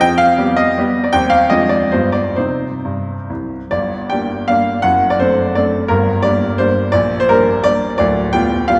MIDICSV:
0, 0, Header, 1, 2, 480
1, 0, Start_track
1, 0, Key_signature, -3, "minor"
1, 0, Tempo, 369686
1, 32, Time_signature, 3, 2, 24, 8
1, 1956, Tempo, 426439
1, 2916, Tempo, 470958
1, 3876, Tempo, 394737
1, 4384, Key_signature, -2, "minor"
1, 5316, Tempo, 350672
1, 11215, End_track
2, 0, Start_track
2, 0, Title_t, "Grand piano"
2, 0, Program_c, 0, 0
2, 9, Note_on_c, 0, 79, 106
2, 20, Note_on_c, 0, 41, 67
2, 230, Note_on_c, 0, 77, 99
2, 246, Note_off_c, 0, 79, 0
2, 290, Control_c, 0, 64, 127
2, 477, Note_off_c, 0, 41, 0
2, 495, Note_on_c, 0, 55, 51
2, 506, Note_on_c, 0, 59, 49
2, 515, Note_on_c, 0, 67, 51
2, 733, Note_off_c, 0, 77, 0
2, 734, Note_on_c, 0, 75, 81
2, 941, Note_off_c, 0, 55, 0
2, 947, Note_off_c, 0, 59, 0
2, 952, Note_off_c, 0, 67, 0
2, 1008, Control_c, 0, 64, 0
2, 1011, Note_on_c, 0, 55, 58
2, 1018, Note_on_c, 0, 59, 53
2, 1029, Note_on_c, 0, 67, 56
2, 1340, Note_off_c, 0, 75, 0
2, 1347, Note_on_c, 0, 74, 65
2, 1426, Note_off_c, 0, 55, 0
2, 1430, Note_off_c, 0, 59, 0
2, 1436, Note_off_c, 0, 67, 0
2, 1462, Note_off_c, 0, 74, 0
2, 1462, Note_on_c, 0, 79, 100
2, 1469, Note_on_c, 0, 55, 45
2, 1472, Note_on_c, 0, 39, 63
2, 1482, Note_on_c, 0, 60, 47
2, 1490, Note_on_c, 0, 67, 43
2, 1685, Note_on_c, 0, 77, 88
2, 1696, Control_c, 0, 64, 127
2, 1699, Note_off_c, 0, 79, 0
2, 1910, Note_off_c, 0, 55, 0
2, 1917, Note_off_c, 0, 60, 0
2, 1922, Note_off_c, 0, 67, 0
2, 1944, Note_on_c, 0, 75, 81
2, 1946, Note_off_c, 0, 39, 0
2, 1949, Note_off_c, 0, 77, 0
2, 1952, Note_on_c, 0, 41, 63
2, 1957, Note_on_c, 0, 56, 40
2, 1963, Note_on_c, 0, 62, 39
2, 1970, Note_on_c, 0, 65, 41
2, 1972, Control_c, 0, 64, 0
2, 2167, Note_on_c, 0, 74, 78
2, 2180, Note_off_c, 0, 75, 0
2, 2180, Control_c, 0, 64, 127
2, 2372, Note_off_c, 0, 56, 0
2, 2375, Note_off_c, 0, 62, 0
2, 2379, Note_off_c, 0, 65, 0
2, 2401, Note_off_c, 0, 41, 0
2, 2407, Note_off_c, 0, 74, 0
2, 2418, Note_on_c, 0, 72, 68
2, 2432, Note_on_c, 0, 55, 36
2, 2434, Note_on_c, 0, 43, 55
2, 2434, Note_on_c, 0, 59, 37
2, 2435, Control_c, 0, 64, 0
2, 2439, Note_on_c, 0, 65, 36
2, 2638, Control_c, 0, 64, 127
2, 2651, Note_on_c, 0, 74, 75
2, 2659, Note_off_c, 0, 72, 0
2, 2878, Note_off_c, 0, 55, 0
2, 2879, Note_off_c, 0, 59, 0
2, 2882, Note_off_c, 0, 65, 0
2, 2910, Note_off_c, 0, 43, 0
2, 2912, Note_off_c, 0, 74, 0
2, 2919, Note_on_c, 0, 72, 64
2, 2929, Control_c, 0, 64, 0
2, 2933, Note_on_c, 0, 48, 44
2, 2933, Note_on_c, 0, 60, 33
2, 2937, Note_on_c, 0, 63, 38
2, 3214, Control_c, 0, 64, 127
2, 3275, Note_off_c, 0, 48, 0
2, 3324, Note_off_c, 0, 60, 0
2, 3326, Note_off_c, 0, 63, 0
2, 3413, Note_on_c, 0, 43, 45
2, 3737, Note_off_c, 0, 43, 0
2, 3875, Note_on_c, 0, 36, 39
2, 3888, Control_c, 0, 64, 0
2, 4142, Note_off_c, 0, 72, 0
2, 4231, Note_off_c, 0, 36, 0
2, 4372, Note_on_c, 0, 74, 75
2, 4382, Note_on_c, 0, 31, 49
2, 4382, Note_on_c, 0, 43, 49
2, 4612, Control_c, 0, 64, 127
2, 4842, Note_on_c, 0, 79, 74
2, 4847, Note_off_c, 0, 74, 0
2, 4864, Note_on_c, 0, 55, 44
2, 4867, Note_on_c, 0, 58, 43
2, 4877, Note_on_c, 0, 62, 45
2, 5276, Note_off_c, 0, 55, 0
2, 5277, Note_off_c, 0, 58, 0
2, 5283, Note_off_c, 0, 62, 0
2, 5305, Note_on_c, 0, 77, 81
2, 5310, Note_off_c, 0, 79, 0
2, 5323, Note_on_c, 0, 55, 41
2, 5328, Note_on_c, 0, 58, 45
2, 5332, Note_on_c, 0, 62, 50
2, 5334, Control_c, 0, 64, 0
2, 5750, Note_off_c, 0, 43, 0
2, 5751, Note_off_c, 0, 31, 0
2, 5753, Note_off_c, 0, 55, 0
2, 5756, Note_off_c, 0, 58, 0
2, 5758, Note_off_c, 0, 62, 0
2, 5778, Note_on_c, 0, 78, 88
2, 5792, Note_off_c, 0, 77, 0
2, 5796, Note_on_c, 0, 42, 55
2, 5797, Note_on_c, 0, 30, 57
2, 6021, Control_c, 0, 64, 127
2, 6157, Note_off_c, 0, 78, 0
2, 6161, Note_on_c, 0, 74, 81
2, 6287, Note_on_c, 0, 72, 79
2, 6292, Note_off_c, 0, 74, 0
2, 6297, Note_on_c, 0, 57, 40
2, 6302, Note_on_c, 0, 60, 46
2, 6305, Note_on_c, 0, 62, 53
2, 6740, Note_off_c, 0, 57, 0
2, 6743, Note_off_c, 0, 60, 0
2, 6744, Note_off_c, 0, 62, 0
2, 6778, Note_on_c, 0, 74, 72
2, 6784, Note_off_c, 0, 72, 0
2, 6798, Note_on_c, 0, 57, 46
2, 6802, Control_c, 0, 64, 0
2, 6806, Note_on_c, 0, 60, 48
2, 6814, Note_on_c, 0, 62, 45
2, 7197, Note_off_c, 0, 42, 0
2, 7198, Note_off_c, 0, 30, 0
2, 7201, Note_off_c, 0, 57, 0
2, 7206, Note_off_c, 0, 60, 0
2, 7210, Note_off_c, 0, 62, 0
2, 7230, Note_on_c, 0, 70, 78
2, 7236, Note_off_c, 0, 74, 0
2, 7244, Note_on_c, 0, 31, 58
2, 7248, Note_on_c, 0, 43, 64
2, 7495, Control_c, 0, 64, 127
2, 7697, Note_on_c, 0, 74, 87
2, 7702, Note_off_c, 0, 70, 0
2, 7718, Note_on_c, 0, 55, 48
2, 7731, Note_on_c, 0, 62, 50
2, 7732, Note_on_c, 0, 58, 42
2, 8160, Note_off_c, 0, 55, 0
2, 8167, Note_off_c, 0, 62, 0
2, 8168, Note_off_c, 0, 58, 0
2, 8186, Note_on_c, 0, 72, 81
2, 8199, Note_off_c, 0, 74, 0
2, 8200, Note_on_c, 0, 55, 48
2, 8205, Note_on_c, 0, 58, 46
2, 8207, Note_on_c, 0, 62, 55
2, 8220, Control_c, 0, 64, 0
2, 8633, Note_off_c, 0, 55, 0
2, 8636, Note_off_c, 0, 58, 0
2, 8637, Note_off_c, 0, 62, 0
2, 8641, Note_off_c, 0, 31, 0
2, 8643, Note_off_c, 0, 43, 0
2, 8647, Note_on_c, 0, 74, 87
2, 8666, Note_on_c, 0, 34, 60
2, 8668, Note_on_c, 0, 46, 61
2, 8674, Note_off_c, 0, 72, 0
2, 8920, Control_c, 0, 64, 127
2, 9018, Note_off_c, 0, 74, 0
2, 9030, Note_on_c, 0, 72, 88
2, 9155, Note_on_c, 0, 70, 80
2, 9156, Note_off_c, 0, 72, 0
2, 9168, Note_on_c, 0, 58, 50
2, 9170, Note_on_c, 0, 55, 50
2, 9187, Note_on_c, 0, 62, 50
2, 9602, Note_off_c, 0, 58, 0
2, 9603, Note_off_c, 0, 55, 0
2, 9612, Note_off_c, 0, 62, 0
2, 9628, Note_on_c, 0, 74, 96
2, 9643, Note_on_c, 0, 55, 46
2, 9644, Note_off_c, 0, 70, 0
2, 9648, Note_on_c, 0, 58, 50
2, 9648, Note_on_c, 0, 62, 50
2, 9664, Control_c, 0, 64, 0
2, 10046, Note_off_c, 0, 34, 0
2, 10046, Note_off_c, 0, 46, 0
2, 10050, Note_off_c, 0, 55, 0
2, 10053, Note_off_c, 0, 58, 0
2, 10053, Note_off_c, 0, 62, 0
2, 10077, Note_off_c, 0, 74, 0
2, 10097, Note_on_c, 0, 74, 82
2, 10110, Note_on_c, 0, 26, 59
2, 10119, Note_on_c, 0, 38, 67
2, 10369, Control_c, 0, 64, 127
2, 10572, Note_off_c, 0, 74, 0
2, 10575, Note_on_c, 0, 79, 89
2, 10585, Note_on_c, 0, 59, 46
2, 10587, Note_on_c, 0, 55, 48
2, 10591, Note_on_c, 0, 65, 53
2, 11030, Note_off_c, 0, 59, 0
2, 11031, Note_off_c, 0, 55, 0
2, 11034, Note_off_c, 0, 65, 0
2, 11055, Note_on_c, 0, 77, 90
2, 11075, Note_off_c, 0, 79, 0
2, 11077, Note_on_c, 0, 55, 48
2, 11077, Note_on_c, 0, 65, 51
2, 11079, Note_on_c, 0, 59, 44
2, 11087, Control_c, 0, 64, 0
2, 11215, Note_off_c, 0, 26, 0
2, 11215, Note_off_c, 0, 38, 0
2, 11215, Note_off_c, 0, 55, 0
2, 11215, Note_off_c, 0, 59, 0
2, 11215, Note_off_c, 0, 65, 0
2, 11215, Note_off_c, 0, 77, 0
2, 11215, End_track
0, 0, End_of_file